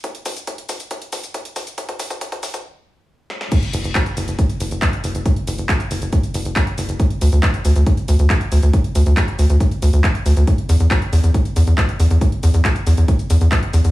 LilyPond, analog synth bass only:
\new Staff \with { instrumentName = "Analog synth bass" } { \clef bass \time 4/4 \key d \lydian \tempo 4 = 138 r1 | r1 | r8 fis,,16 fis,,16 r8 fis,,16 fis,,16 r8 fis,,16 fis,,16 r8 fis,,16 fis,,16 | r8 fis,,16 fis,,16 r8 fis,,16 fis,,16 r8 fis,,16 fis,,16 r8 fis,,16 fis,,16 |
r8 d,16 d,16 r8 d,16 d,16 r8 d,16 d,16 r8 d,16 d,16 | r8 d,16 d,16 r8 d,16 d,16 r8 d,16 d,16 r8 d,16 d,16 | r8 e,16 e,16 r8 e,16 e,16 r8 e,16 e,16 r8 e,16 e,16 | r8 e,16 e,16 r8 e,16 e,16 r8 e,16 e,16 r8 e,16 e,16 | }